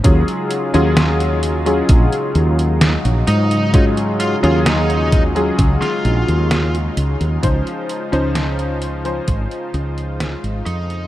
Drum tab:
HH |xxxxxxxxxxxxxxxx|xxxxxxxxxxxxxxxx|xxxxxxxxxxxxxxxx|
SD |----o-------o---|----o----o--o---|----o-------o---|
BD |o-------o-------|o-----o-o-------|o-------o-------|